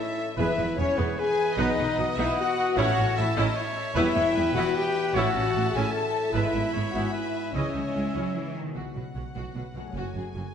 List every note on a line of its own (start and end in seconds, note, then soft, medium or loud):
0.00 0.40 A2 medium
0.00 0.39 A3 medium
0.00 0.40 C#4 soft
0.00 0.36 E4 medium
0.00 0.34 A4 medium
0.00 0.39 A4 medium
0.00 0.17 C#5 medium
0.00 0.33 C#5 medium
0.00 0.36 E5 medium
0.00 0.37 E5 medium
0.00 1.53 E5 medium
0.18 0.39 C#5 medium
0.37 0.46 E1 medium
0.37 0.47 E2 medium
0.37 1.59 E3 medium
0.37 0.52 E3 medium
0.37 0.51 G#3 medium
0.37 0.56 B3 medium
0.37 0.77 E4 loud
0.37 0.56 G#4 medium
0.37 0.51 B4 medium
0.37 2.74 B4 medium
0.37 0.78 B4 medium
0.37 0.75 E5 medium
0.37 0.77 E5 medium
0.58 0.66 E1 medium
0.58 0.66 E2 medium
0.58 0.66 B3 medium
0.58 1.78 B3 medium
0.58 0.66 E4 soft
0.76 0.86 E1 medium
0.76 0.86 E2 medium
0.76 0.85 B3 medium
0.76 0.98 C#4 loud
0.76 1.18 G#4 medium
0.76 0.99 C#5 medium
0.76 0.98 C#5 medium
0.76 1.20 C#5 medium
0.97 1.05 E1 medium
0.97 1.07 E2 medium
0.97 1.16 B3 medium
0.97 1.18 B3 medium
0.97 1.16 G#4 medium
0.97 1.21 B4 medium
0.97 1.18 B4 medium
0.97 1.38 B4 medium
1.18 1.57 G#4 loud
1.18 1.98 B4 medium
1.18 1.57 G#5 loud
1.18 1.60 G#5 medium
1.39 2.18 B4 medium
1.56 1.65 B1 medium
1.56 2.80 B2 medium
1.56 1.67 B2 medium
1.56 1.72 F#3 medium
1.56 1.76 B3 loud
1.56 1.71 B3 medium
1.56 1.76 D#4 medium
1.56 2.02 D#4 loud
1.56 1.72 B4 medium
1.56 2.17 D#5 medium
1.56 2.18 D#5 medium
1.56 2.79 F#5 medium
1.77 1.85 B1 medium
1.77 1.87 B2 medium
1.77 1.86 B3 medium
1.77 2.80 B3 medium
1.97 2.06 B1 medium
1.97 2.06 B2 medium
1.97 2.06 F#3 medium
1.97 2.05 B3 medium
1.97 2.37 F#4 medium
1.97 2.77 D#5 loud
2.16 2.25 B1 loud
2.16 2.26 B2 medium
2.16 2.36 B3 medium
2.16 2.36 D#4 medium
2.16 2.38 E4 loud
2.16 2.57 B4 medium
2.16 2.37 E5 medium
2.16 2.25 E5 loud
2.37 2.80 F#4 medium
2.37 2.78 F#4 loud
2.37 2.75 F#5 loud
2.37 2.77 F#5 loud
2.58 2.79 B4 medium
2.74 2.85 A1 loud
2.74 3.98 A2 medium
2.74 2.86 A2 medium
2.74 2.89 E3 medium
2.74 2.90 A3 medium
2.74 2.95 C#4 loud
2.74 2.95 E4 loud
2.74 3.15 C#5 loud
2.74 2.91 C#5 medium
2.74 3.16 F#5 loud
2.74 3.94 A5 medium
2.78 3.18 F#4 loud
2.78 5.12 E5 medium
2.78 3.17 F#5 loud
2.97 3.05 A1 medium
2.97 3.06 A2 medium
2.97 3.05 C#4 medium
2.97 3.98 C#4 medium
3.16 3.25 A1 medium
3.16 3.27 A2 medium
3.16 3.25 A3 medium
3.16 3.25 C#4 medium
3.16 3.38 E4 loud
3.16 3.55 A4 medium
3.16 3.98 A4 medium
3.16 3.36 E5 medium
3.16 3.37 E5 medium
3.36 3.44 A1 loud
3.36 3.46 A2 loud
3.36 3.55 C#4 medium
3.36 3.47 D#4 loud
3.36 3.55 E4 loud
3.36 3.56 D#5 medium
3.36 3.57 D#5 medium
3.36 3.75 E5 medium
3.56 4.34 C#5 loud
3.56 3.98 C#5 medium
3.76 7.56 E5 medium
3.94 4.03 E1 loud
3.94 5.17 E2 medium
3.94 4.04 E2 loud
3.94 4.09 E3 medium
3.94 4.09 G3 medium
3.94 4.15 B3 loud
3.94 4.15 E4 loud
3.94 4.52 E4 loud
3.94 4.09 B4 medium
3.94 4.51 E5 loud
3.94 4.52 E5 loud
3.94 5.15 G5 medium
4.15 4.23 E1 medium
4.15 4.24 E2 medium
4.15 5.16 B3 medium
4.15 4.24 B3 medium
4.34 4.43 E1 medium
4.34 4.45 E2 medium
4.34 4.44 G3 medium
4.34 4.44 B3 medium
4.34 5.16 G4 medium
4.34 5.13 B4 loud
4.54 4.62 E1 loud
4.54 4.64 E2 loud
4.54 4.75 B3 loud
4.54 4.74 E4 loud
4.54 4.75 F#4 loud
4.54 4.60 F#5 loud
4.54 4.76 F#5 loud
4.75 5.15 G4 loud
4.75 5.17 B4 medium
4.75 5.13 G5 loud
4.75 5.15 G5 loud
5.12 5.22 A1 medium
5.12 6.36 A2 medium
5.12 5.23 A2 loud
5.12 5.28 E3 medium
5.12 5.27 A3 medium
5.12 5.34 C#4 medium
5.12 5.34 E4 loud
5.12 5.74 F#4 loud
5.12 6.05 A4 medium
5.12 5.28 C#5 medium
5.12 7.51 E5 medium
5.12 5.73 F#5 loud
5.12 5.74 F#5 medium
5.16 6.33 A5 medium
5.34 5.42 A1 medium
5.34 5.44 A2 medium
5.34 6.36 C#4 medium
5.34 5.43 C#4 medium
5.53 5.61 A1 medium
5.53 5.64 A2 medium
5.53 5.63 A3 medium
5.53 5.63 C#4 medium
5.53 6.73 E4 medium
5.71 5.81 A1 medium
5.71 5.93 C#4 medium
5.71 5.93 E4 medium
5.71 5.93 G#4 loud
5.71 5.93 G#5 medium
5.76 5.84 A2 medium
5.76 5.95 G#5 medium
5.92 6.32 A4 loud
5.92 6.13 C#5 medium
5.92 6.33 A5 medium
5.92 6.34 A5 medium
6.14 8.70 C#5 medium
6.32 6.42 G#1 medium
6.32 7.56 G#2 medium
6.32 6.43 G#2 medium
6.32 6.48 E3 medium
6.32 6.48 G#3 medium
6.32 6.53 B3 medium
6.32 6.93 E4 loud
6.32 6.53 E4 medium
6.32 6.71 B4 medium
6.32 6.48 B4 medium
6.32 6.93 E5 medium
6.32 6.95 E5 medium
6.32 7.55 B5 medium
6.54 6.62 G#1 medium
6.54 6.62 G#2 medium
6.54 6.62 B3 medium
6.54 7.56 B3 medium
6.73 6.83 G#1 medium
6.73 6.83 G#2 medium
6.73 6.83 G#3 soft
6.73 6.83 B3 medium
6.73 7.94 E4 medium
6.73 7.12 C#5 medium
6.91 7.02 G#1 medium
6.91 7.01 G#2 medium
6.91 7.13 B3 medium
6.91 7.13 E4 medium
6.91 7.14 F#4 medium
6.91 7.14 F#5 medium
6.91 7.03 F#5 medium
6.91 8.77 G#5 medium
7.11 7.52 E4 medium
7.11 7.53 B4 medium
7.11 7.34 B4 soft
7.11 7.52 E5 medium
7.15 7.54 E5 medium
7.51 7.62 C#2 medium
7.51 7.62 C#3 medium
7.51 8.78 C#3 medium
7.51 8.54 C#4 medium
7.51 7.73 C#4 medium
7.51 8.53 C#5 medium
7.51 7.68 D#5 medium
7.51 8.56 D#5 medium
7.51 8.53 E5 medium
7.55 7.69 E3 medium
7.55 7.69 G#3 medium
7.55 7.74 E4 medium
7.55 8.56 C#5 medium
7.55 8.54 G#5 medium
7.74 7.82 C#2 soft
7.74 7.83 C#3 soft
7.74 8.78 G#3 soft
7.74 7.83 C#4 soft
7.74 7.83 D#4 soft
7.94 8.03 C#2 soft
7.94 8.14 G#3 medium
7.94 8.03 C#4 soft
7.94 8.78 E4 soft
8.14 8.23 C#2 medium
8.14 8.35 F#3 medium
8.14 8.33 C#4 medium
8.14 8.33 E4 medium
8.35 8.55 E3 medium
8.35 8.78 G#4 soft
8.56 9.88 B2 soft
8.56 8.76 D#3 medium
8.56 8.78 D#5 soft
8.62 9.90 B3 soft
8.67 10.54 F#4 soft
8.72 8.83 B1 soft
8.72 8.94 F#4 soft
8.72 9.89 C#5 soft
8.72 9.91 F#5 soft
8.76 8.84 B2 soft
8.95 9.03 B1 soft
8.95 9.04 B2 soft
8.95 9.04 F#4 soft
8.95 9.03 B4 soft
9.14 9.23 B1 soft
9.14 9.22 B2 soft
9.14 9.24 F#4 soft
9.14 9.23 C#5 soft
9.35 9.43 B1 soft
9.35 9.43 B2 medium
9.35 9.54 F#4 soft
9.35 9.55 F#4 soft
9.55 9.63 B1 soft
9.55 9.63 B2 soft
9.55 9.64 F#4 soft
9.55 9.65 B4 soft
9.74 9.82 B1 soft
9.74 10.54 F#2 medium
9.74 9.82 B2 soft
9.74 9.85 F#4 soft
9.74 9.85 C#5 soft
9.82 10.54 A3 soft
9.86 10.54 G#4 soft
9.90 10.02 F#2 medium
9.90 10.54 C#5 soft
9.90 10.54 G#5 soft
9.94 10.02 F#1 medium
9.94 10.15 F#4 medium
10.15 10.23 F#1 soft
10.15 10.23 F#2 soft
10.15 10.24 F#4 soft
10.15 10.25 G#4 soft
10.34 10.42 F#1 soft
10.34 10.44 F#2 medium
10.34 10.43 F#4 soft
10.34 10.44 A4 soft